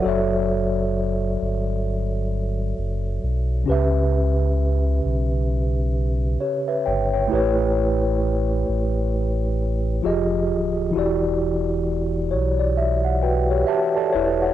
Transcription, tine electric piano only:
0.00 3.62 F#3 medium
0.00 3.63 F#4 medium
0.00 0.30 D5 medium
0.04 3.64 A4 medium
0.04 3.65 C#5 medium
0.04 3.66 E5 medium
3.64 7.26 C#3 medium
3.64 7.26 C#4 medium
3.64 6.36 G4 medium
3.69 6.37 B4 medium
3.69 6.38 E5 medium
6.40 6.67 G4 soft
6.40 6.67 C#5 medium
6.68 6.85 B4 medium
6.68 6.85 E5 medium
6.86 7.12 C#5 medium
6.86 7.12 G5 medium
7.13 7.34 C#5 medium
7.13 7.57 G5 medium
7.27 9.98 A3 medium
7.27 9.99 E4 medium
7.27 10.00 G4 medium
7.33 10.01 B4 medium
7.33 10.02 C#5 medium
10.02 10.94 F3 medium
10.02 10.95 F4 medium
10.02 10.95 G4 medium
10.02 10.96 G#4 medium
10.02 10.96 D#5 medium
10.91 14.53 E3 medium
10.91 14.14 E4 medium
10.91 13.18 F#4 medium
10.97 13.19 G4 medium
10.97 12.58 D5 medium
12.31 12.57 C#5 medium
12.60 12.76 D5 medium
12.78 13.03 E5 medium
13.05 13.21 F#5 medium
13.23 13.49 F#4 medium
13.23 13.49 B4 medium
13.23 13.65 G5 medium
13.50 13.68 G4 medium
13.50 13.93 C#5 medium
13.67 14.11 G4 medium
13.67 14.13 E5 medium
13.67 13.94 A5 medium
13.96 14.13 A4 medium
13.96 14.13 D5 medium
13.96 14.54 A5 medium
14.12 14.54 E4 medium
14.12 14.40 B4 medium
14.12 14.41 C#5 medium
14.12 14.40 E5 medium
14.42 14.54 C#5 medium
14.42 14.54 F#5 medium

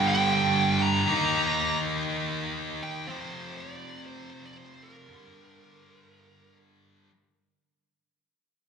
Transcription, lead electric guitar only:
0.08 0.85 G5 medium
0.82 1.79 A#5 loud
2.83 3.09 G5 loud
3.07 3.57 C5 loud
3.57 4.05 D5 loud
4.06 4.29 C5 loud
4.30 4.46 C5 loud
4.46 4.57 D5 medium
4.57 4.84 C5 medium
4.83 6.56 A#4 medium

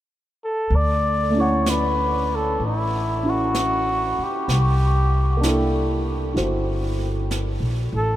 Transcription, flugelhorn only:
0.44 0.77 A4 medium
0.76 1.42 D5 medium
1.40 1.72 C#5 medium
1.70 2.37 B4 medium
2.35 2.63 A4 medium
2.65 3.31 E4 medium
3.30 4.25 F#4 medium
4.24 6.09 G4 medium
7.96 8.16 A4 medium

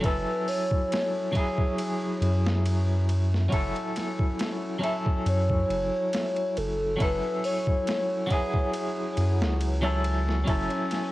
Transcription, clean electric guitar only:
0.01 1.28 F#3 medium
0.01 1.29 C#4 medium
0.01 1.30 E4 medium
0.06 1.31 A4 medium
1.33 3.46 F#3 medium
1.33 3.47 C#4 medium
1.33 3.48 E4 medium
1.37 3.49 G#4 loud
3.49 4.76 F#3 medium
3.49 4.77 C#4 medium
3.49 4.77 E4 medium
3.54 4.78 A4 loud
4.79 6.93 F#3 medium
4.79 6.94 C#4 medium
4.79 6.95 E4 medium
4.84 6.96 A4 loud
6.97 8.24 F#3 medium
6.97 8.25 C#4 medium
6.97 8.25 E4 medium
7.02 8.27 A4 medium
8.27 9.78 F#3 medium
8.27 9.79 C#4 medium
8.27 9.79 E4 medium
8.32 9.80 G#4 loud
9.82 10.42 F#3 medium
9.82 10.42 C#4 medium
9.82 10.42 E4 medium
9.82 10.43 A4 loud
10.44 11.12 F#3 medium
10.44 11.12 C#4 medium
10.44 11.12 E4 medium
10.50 11.12 A4 medium

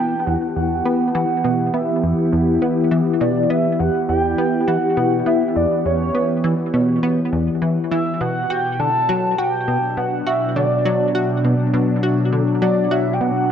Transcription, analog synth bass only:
0.00 0.14 B3 medium
0.27 0.37 E2 medium
0.56 0.82 E2 medium
0.85 1.11 B3 medium
1.15 1.25 E3 loud
1.44 1.70 B2 loud
1.74 1.91 B3 medium
2.03 2.13 E2 medium
2.33 2.58 E2 medium
2.62 2.87 B3 medium
2.91 3.01 E3 loud
3.21 3.46 B2 loud
3.50 3.67 B3 medium
3.80 3.90 E2 medium
4.09 4.35 E2 medium
4.38 4.64 B3 medium
4.68 4.78 E3 loud
4.97 5.23 B2 loud
5.26 5.43 B3 medium
5.56 5.66 E2 medium
5.85 6.11 E2 medium
6.15 6.40 B3 medium
6.44 6.54 E3 loud
6.74 6.99 B2 loud
7.03 7.20 B3 medium
7.32 7.49 E2 medium
7.62 7.79 E3 medium
7.91 8.17 E3 loud
8.21 8.46 B2 medium
8.50 8.76 F#4 medium
8.79 8.90 D3 medium
9.09 9.35 F#3 loud
9.38 9.55 F#4 medium
9.68 9.78 B2 medium
9.97 10.23 B2 medium
10.27 10.52 F#4 medium
10.56 10.66 D3 medium
10.85 11.11 F#3 loud
11.15 11.32 F#4 medium
11.44 11.54 B2 medium
11.74 11.99 B2 medium
12.03 12.29 F#4 medium
12.32 12.43 D3 medium
12.62 12.87 F#3 loud
12.91 13.08 F#4 medium
13.21 13.31 B2 medium

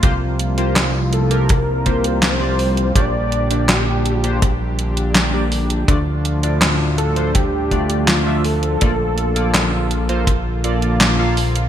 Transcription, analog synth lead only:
1.13 1.52 A4 medium
1.50 2.22 A#4 loud
2.23 2.92 C5 loud
2.96 3.65 D5 loud
3.69 4.20 G4 medium
4.20 4.38 F4 medium
6.98 7.36 A4 loud
7.35 8.09 G4 loud
8.08 8.46 F4 loud
8.45 9.91 A4 loud

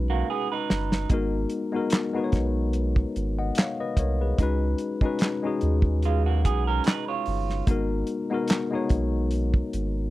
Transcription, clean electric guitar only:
0.10 0.27 A#3 medium
0.10 0.27 F#4 medium
0.30 0.50 B3 medium
0.30 0.50 G#4 medium
0.52 1.08 D#4 medium
0.52 1.08 B4 medium
6.05 6.25 G#3 medium
6.05 6.25 F4 medium
6.26 6.44 A#3 medium
6.26 6.44 F#4 medium
6.45 6.65 B3 medium
6.45 6.65 G#4 medium
6.67 6.85 C#4 medium
6.67 6.85 A#4 medium
6.86 7.07 D#4 medium
6.86 7.06 B4 medium
7.08 7.65 F4 medium
7.08 7.65 C#5 medium

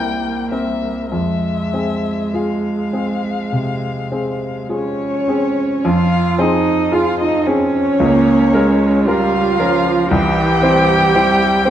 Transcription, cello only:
0.00 1.09 G3 medium
1.13 4.67 G#3 medium
4.73 5.88 C#4 medium
5.87 6.43 F4 loud
6.42 6.96 D#4 loud
6.94 7.22 F4 loud
7.20 7.48 D#4 loud
7.47 9.06 C#4 loud
9.07 10.13 F4 loud
10.11 11.70 G4 loud

